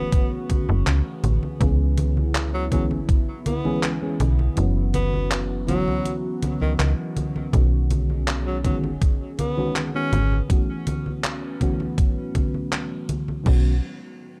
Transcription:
Already playing: C#3 E3 A3 B3 C#4 F#4
0.12 kick, closed hi-hat, high conga
0.50 kick, closed hi-hat, high conga
0.69 F#1, high conga
0.87 C#2, clap, closed hi-hat, high conga
1.24 A1, closed hi-hat, high conga
1.43 high conga
1.60 C#2 E3 G#3 B3 C#4 E4 G#4, kick, closed hi-hat, high conga
1.98 closed hi-hat, high conga
2.17 high conga
2.35 clap, closed hi-hat, high conga
2.54 F#3
2.72 E3 F#3 G#3 B3 C#4 G#4, kick, closed hi-hat, high conga
2.91 G#1, high conga
3.09 kick, closed hi-hat, high conga
3.46 B3, closed hi-hat, high conga
3.65 E3 G#3 B3 C#4 G#4, high conga
3.83 clap, closed hi-hat, high conga
4.01 E3 G#3 B3 C#4 G#4
4.20 B1, closed hi-hat, high conga
4.39 high conga
4.56 F#1 E3 F#3 B3 C#4 F#4, closed hi-hat, high conga
4.94 B3, closed hi-hat, high conga
5.13 high conga
5.31 clap, closed hi-hat, high conga
5.67 E3 F#3 B3 C#4 F#4, closed hi-hat, high conga
5.87 C#2, high conga
6.06 closed hi-hat, high conga
6.43 closed hi-hat, high conga
6.61 C#2 D#3, high conga
6.79 C#2 D#3, clap, closed hi-hat, high conga
7.17 closed hi-hat, high conga
7.36 high conga
7.52 B1 D#3 G#3 B3 C#4 F#4 G#4, kick, closed hi-hat, high conga
7.91 closed hi-hat, high conga
8.10 high conga
8.28 clap, closed hi-hat, high conga
8.47 F#3
8.64 D#3 F#3 G#3 B3 C#4 F#4, kick, closed hi-hat, high conga
8.84 F#1, high conga
9.02 kick, closed hi-hat, high conga
9.39 B3, closed hi-hat, high conga
9.57 D#3 G#3 B3 C#4 F#4, high conga
9.76 clap, closed hi-hat, high conga
9.94 D#3 G#3 B3 C#4 F#4
10.13 G#1, closed hi-hat, high conga
10.32 high conga
10.48 A2 E3 F#3 A3 B3 C#4 F#4 B4, kick, closed hi-hat, high conga
10.87 closed hi-hat, high conga
11.06 high conga
11.24 clap, closed hi-hat, high conga
11.60 E3 A3 B3 C#4 F#4, kick, closed hi-hat, high conga
11.80 high conga
11.98 kick, closed hi-hat, high conga
12.35 kick, closed hi-hat, high conga
12.54 high conga
12.72 clap, closed hi-hat, high conga
13.09 closed hi-hat, high conga
13.28 high conga
13.44 B1 D#3 G#3 B3 C#4, kick, crash
13.48 F#4

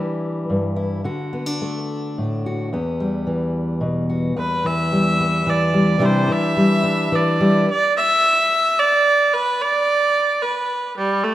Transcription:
Already playing: E3 G3 D4 E4
0.50 G2
0.76 E4
1.04 D3 F#4
1.33 B3
1.46 D4
1.61 A3
2.18 A2
2.46 F#4
2.73 E2 B3
3.00 G3
3.27 E3
3.81 B2
4.09 F#4
4.36 E2 B4
4.64 E3 E5
4.92 G3
5.21 B3
5.46 E3 D5
5.74 G3
5.99 C3 E3 G3 D4 E4
6.05 C5
6.28 E3
6.32 E5
6.57 G3
6.83 D4
7.12 E3 D5
7.40 G3
7.70 D5
7.97 E5
8.79 D5
9.33 B4
9.62 D5
10.42 B4
10.97 G3
11.24 A3

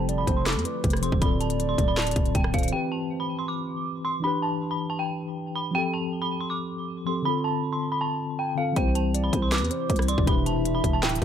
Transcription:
Already playing: F1 F3 A3 C4 G4 A4 A5
0.09 D5, closed hi-hat
0.18 B5
0.27 F1 C5, kick, closed hi-hat
0.37 C6
0.46 A4 D6, cross-stick, snare, clap, closed hi-hat
0.53 F2, closed hi-hat
0.59 closed hi-hat
0.65 B4, closed hi-hat
0.84 F1, kick, closed hi-hat
0.90 cross-stick, closed hi-hat
0.97 closed hi-hat
1.01 F3 C4 G4 A4 C5 C6, closed hi-hat
1.12 D1, kick
1.19 D3 C4 F4 D5 B5, kick, closed hi-hat
1.23 F4 A4
1.41 A5, closed hi-hat
1.50 closed hi-hat
1.60 closed hi-hat
1.69 C6
1.78 D1, kick, closed hi-hat
1.88 B5
1.97 A5, cross-stick, snare, clap, closed hi-hat
2.02 closed hi-hat
2.07 closed hi-hat
2.11 closed hi-hat
2.16 D1, kick, closed hi-hat
2.26 closed hi-hat
2.35 D1 G5, kick, closed hi-hat
2.44 cross-stick
2.52 D1 D3 C4 F4 A4 C5 F5, kick, closed hi-hat, open hi-hat
2.59 closed hi-hat
2.63 closed hi-hat
2.68 E3 C4, closed hi-hat
2.73 G4 B4 G5
2.92 A5
3.20 B5
3.39 C6
3.48 D6
4.05 C6
4.20 E3 D4 B5
4.25 G4 B4
4.42 A5
4.71 B5
4.90 A5
4.99 G5
5.56 B5
5.71 F3 C4 G5
5.76 G4 A4
5.94 A5
6.22 B5
6.41 C6
6.50 D6
7.05 F3 C4 G4 A4 C6
7.22 D3 C4 B5
7.27 F4 A4
7.44 A5
7.73 C6
7.92 B5
8.01 A5
8.39 G5
8.56 D3 C4 F4 A4 F5
8.73 C2 C3 E3 C4 E4 C5 G5, kick, closed hi-hat
8.77 G4 C5
8.95 A5, closed hi-hat
9.14 D5, closed hi-hat
9.24 B5
9.33 C2 C5, kick, closed hi-hat
9.42 C6
9.52 B4 D6, cross-stick, snare, clap, closed hi-hat
9.58 E2, closed hi-hat
9.64 closed hi-hat
9.71 C5, closed hi-hat
9.90 C2, kick, closed hi-hat
9.96 cross-stick, closed hi-hat
10.02 closed hi-hat
10.08 D5 C6, closed hi-hat
10.18 E1, kick
10.24 D3 E3 G3 D4 E5 B5, kick, closed hi-hat
10.28 G4 B4
10.46 A5, closed hi-hat
10.65 closed hi-hat
10.75 B5
10.84 E1, kick, closed hi-hat
10.93 A5
11.03 D1 G5, cross-stick, snare, clap, closed hi-hat
11.09 closed hi-hat
11.15 closed hi-hat

